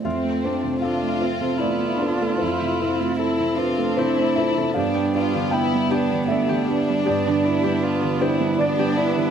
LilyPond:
<<
  \new Staff \with { instrumentName = "Harp" } { \time 3/4 \key f \lydian \tempo 4 = 77 f'8 c'8 a'8. a'8. a'16 a'16~ | a'16 e''8. a'8. a'16 c''8 a'16 a'16 | g'16 g''16 d''16 g'16 b''8 g'8 d''16 g'8. | g'8 d''16 g'8. g'16 b'16 d''16 g'16 b'16 b'16 | }
  \new Staff \with { instrumentName = "Violin section" } { \time 3/4 \key f \lydian c'4 f'4 e'8 d'8 | e'4 e'8 f'8 e'4 | d'8 f'8 e'8 d'8 d'4~ | d'2 d'4 | }
  \new Staff \with { instrumentName = "Cello" } { \time 3/4 \key f \lydian c'8 d'8 c'4 f'4~ | f'4 e'8 d'4. | d'4 b2 | d'8 e'8 f'8 e'8 d'8 e'8 | }
  \new Staff \with { instrumentName = "Felt piano" } { \time 3/4 \key f \lydian e''4 f''4 d''4 | c''4. b'8 c''8 e''8 | f''4 g''4 e''4 | d''4. c''8 d''8 r8 | }
  \new Staff \with { instrumentName = "Felt piano" } { \time 3/4 \key f \lydian f,16 a16 <f' c''>16 c8 a16 <f' c''>16 c16 a16 c16 <f' c''>16 a16 | f,16 c16 <f' c''>16 a8 c16 <f' c''>16 a16 c16 a16 <f' c''>16 c16 | g,16 g16 <d' b'>16 d8 g16 <d' b'>16 d16 g16 d16 <d' b'>16 g16 | g,16 d16 <d' b'>16 g8 d16 <d' b'>16 g16 d16 g16 <d' b'>16 d16 | }
  \new Staff \with { instrumentName = "Viola" } { \time 3/4 \key f \lydian a4 d'8 c'8 b4 | a8 c'2~ c'8 | b2 a8 g8 | b2 b4 | }
>>